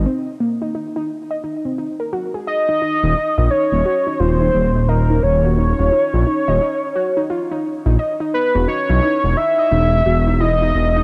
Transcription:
X:1
M:4/4
L:1/16
Q:"Swing 16ths" 1/4=87
K:Ebdor
V:1 name="Soft synth lead"
z12 z2 e2- | e4 d4 c4 B2 d2- | d12- d2 z2 | =B2 d4 =e6 _e4 |]
V:2 name="Synth pluck"
C z B, E E E z e E C E B G A e E | E z E e E z G E F E z E e E z G | E F E z E e E z G E F E z E e E | z G E =E _E z E e E z G E =E _E z E |]
V:3 name="Detuned saw bass" clef=bass
z16 | z E,,, z B,,, z E,,, z2 E,,,2 E,,,4 E,,,2- | E,,, E,,, z B,,, z E,,, z6 z B,,, z2 | z =E,,, z =B,,, z E,,, z2 E,,,2 E,,,4 E,,,2 |]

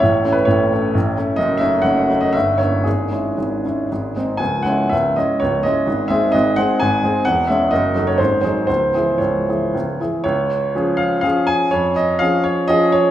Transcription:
X:1
M:3/4
L:1/16
Q:1/4=124
K:C#m
V:1 name="Grand piano"
c3 B c6 z2 | d2 e2 f3 d e2 _d2 | G8- G2 z2 | g2 f2 e2 d2 c2 d2- |
d2 e2 d2 f2 g4 | f2 e2 d3 c ^B2 B2 | ^B4 c6 z2 | [K:Db] d6 f2 f2 a2 |
d2 e2 f2 d2 e2 d2 |]
V:2 name="Grand piano" clef=bass
[A,,,A,,]2 [A,CE]2 [A,,,A,,]2 [A,CE]2 [A,,,A,,]2 [A,CE]2 | [F,,,F,,]2 [A,CD]2 [F,,,F,,]2 [A,CD]2 [=G,,,=G,,]2 [_B,_DE]2 | [G,,,G,,]2 [G,CE]2 [G,,,G,,]2 [G,CE]2 [G,,,G,,]2 [G,^B,D]2 | [C,,,C,,]2 [G,CE]2 [C,,,C,,]2 [G,CE]2 [C,,,C,,]2 [G,CE]2 |
[G,,,G,,]2 [G,^B,G]2 [G,,,G,,]2 [G,B,G]2 [G,,,G,,]2 [G,B,G]2 | [E,,,E,,]2 [G,CG]2 [F,,,F,,]2 [F,DA]2 [G,,,G,,]2 [F,DG]2 | [C,,,C,,]2 [E,EG]2 [C,,,C,,]2 [E,EG]2 [C,,,C,,]2 [E,EG]2 | [K:Db] D,,4 [F,DA]4 [F,DA]4 |
F,,4 [F,DA]4 [F,DA]4 |]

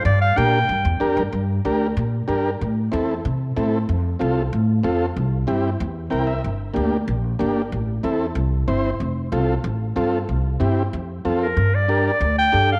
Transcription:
X:1
M:4/4
L:1/8
Q:1/4=187
K:Gdor
V:1 name="Clarinet"
d f g4 z2 | z8 | z8 | z8 |
z8 | z8 | z8 | z8 |
z6 z B- | B d2 d2 g2 f |]
V:2 name="Transistor combo organ"
z2 [DGB] z3 [DGB] z | z2 [DGB] z3 [DGB] z | z2 [CEA] z3 [CEA] z | z2 [CFA] z3 [CFA] z |
z2 [CEG] z3 [CEBg] e | z2 [B,DG] z3 [B,DG] z | z2 [CEA] z3 [CEc] z | z2 [CFA] z3 [CFA] z |
z2 [CEG] z3 [CFA] z | z2 [DGB] z3 [DGA] z |]
V:3 name="Upright bass" clef=bass
G,,2 B,,2 G,, E,, F,, G,, | G,,2 D,,2 B,,2 G,,2 | A,,2 E,,2 C,2 A,,2 | F,,2 C,,2 A,,2 F,,2 |
C,,2 G,,2 E,,2 C,,2 | G,,,2 D,,2 B,,,2 G,,,2 | A,,,2 E,,2 C,,2 G,,,2 | F,,,2 C,,2 A,,,2 G,,2 |
C,,2 G,,2 F,,2 F,,2 | G,,4 D,,2 G,,2 |]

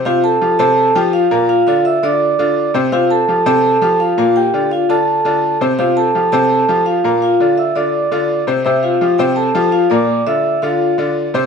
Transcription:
X:1
M:4/4
L:1/8
Q:1/4=167
K:F
V:1 name="Vibraphone"
[Ff] [Aa]2 [Aa]2 [Gg] [Ff]2 | [Ff] [Ff] [ee'] [dd']4 z | [Ff] [Aa]2 [Aa]3 [Ff] [Ff] | [Gg]2 [Ff] [Aa]4 z |
[Ff] [Aa]2 [Aa]3 [Ff]2 | [Ff]2 [ee'] [dd']4 z | [ee'] [Ff]2 [Gg] [Aa]2 [Ff] [dd']- | [dd'] [ee']2 [Ff]2 z3 |]
V:2 name="Grand piano"
[C,Cc]2 [F,FG] [C,Cc]2 [F,FG]2 [B,,B,B]- | [B,,B,B] [D,DF]2 [D,DF]2 [D,DF]2 [C,Cc] | [C,Cc]2 [F,FG] [C,Cc]2 [F,FG]2 [B,,B,B]- | [B,,B,B] [D,DF]2 [D,DF]2 [D,DF]2 [C,Cc] |
[C,Cc]2 [F,FG] [C,Cc]2 [F,FG]2 [B,,B,B]- | [B,,B,B] [D,DF]2 [D,DF]2 [D,DF]2 [C,Cc] | [C,Cc]2 [F,FG] [C,Cc]2 [F,FG]2 [B,,B,B]- | [B,,B,B] [D,DF]2 [D,DF]2 [D,DF]2 [C,Cc] |]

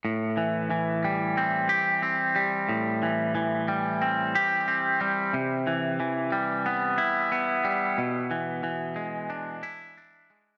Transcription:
X:1
M:4/4
L:1/8
Q:1/4=91
K:Am
V:1 name="Clean electric guitar" clef=bass
A,, E, E, G, C G C G, | A,, E, E, G, C G C G, | C, E, E, G, B, E B, G, | B,, E, E, ^G, D E D G, |]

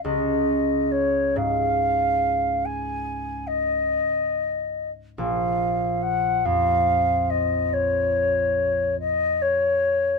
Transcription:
X:1
M:12/8
L:1/8
Q:3/8=47
K:Db
V:1 name="Flute"
e2 d f3 a2 e3 z | f2 g f2 e d3 e d2 |]
V:2 name="Harp" clef=bass
D,,3 A,,8- A,, | B,,,3 F,,8- F,, |]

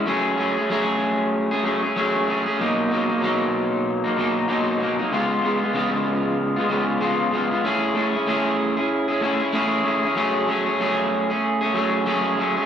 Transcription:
X:1
M:4/4
L:1/16
Q:"Swing 16ths" 1/4=95
K:F#
V:1 name="Clean electric guitar"
[F,=A,CG]2 [F,A,CG] [A,CG] [F,A,CG]4- [F,A,CG] [A,CG] [F,A,CG] [A,CG] [F,A,CG]2 [F,A,CG] [A,CG] | [B,,F,A,D]2 [B,,F,A,D] [F,A,D] [B,,F,A,D]4- [B,,F,A,D] [F,A,D] [B,,F,A,D]2 [B,,F,A,D]2 [B,,F,A,D] [F,A,D] | [C,G,B,E]2 [C,G,B,E] [G,B,E] [C,G,B,E]4- [C,G,B,E] [G,B,E] [C,G,B,E]2 [C,G,B,E]2 [C,G,B,E] [G,B,E] | [=A,C=EG]2 [A,CEG] [CEG] [A,CEG]3 [CEG]2 [CEG] [A,CEG] [CEG] [A,CEG]2 [A,CEG] [CEG] |
[F,=A,CG]2 [F,A,CG] [A,CG] [F,A,CG]3 [A,CG]2 [A,CG] [F,A,CG]2 [F,A,CG]2 [F,A,CG] [A,CG] |]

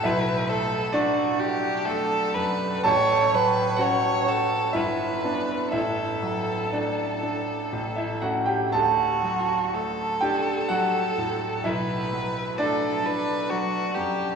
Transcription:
X:1
M:3/4
L:1/16
Q:1/4=63
K:D
V:1 name="Violin"
B2 A2 F2 G2 A2 B2 | c2 B2 c2 A2 B4 | A8- A2 z2 | F4 A8 |
B4 A2 B2 F2 G2 |]
V:2 name="Grand piano"
[Ee]4 [Dd]8 | [Aa]4 [Ff]4 [Ee]4 | [Ee]4 [Dd]4 z [Ee] [Ff] [Gg] | [Aa]6 [Gg]2 [Ff]4 |
[Ee]4 [Dd]8 |]
V:3 name="Grand piano" clef=bass
B,,,2 A,4 F2 A,2 F,,2 | A,,,2 F,2 C2 F2 G,,,2 [B,D]2 | A,,,2 F,2 A,2 D2 A,,,2 [A,C]2 | D,,2 F,2 A,2 D2 F,2 A,,2 |
B,,,2 F,2 A,2 D2 F,2 F,,2 |]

